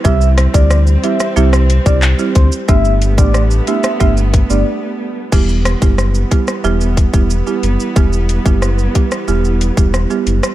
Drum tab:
CC |----------------|----------------|x---------------|----------------|
HH |--x---x---x---x-|--x---x---x-----|--x---x---x---x-|--x---x---x---x-|
SH |xxxxxxxxxxxxxxxx|xxxxxxxxxxxx----|xxxxxxxxxxxxxxxx|xxxxxxxxxxxxxxxx|
CP |------------x---|----------------|----------------|----------------|
SD |--r-r--r-r------|----r--r--------|--r-r--r--------|----r--r----r--r|
BD |o--o-------o--o-|o--o----o-o-----|o--o--o---oo----|o--o--o----o----|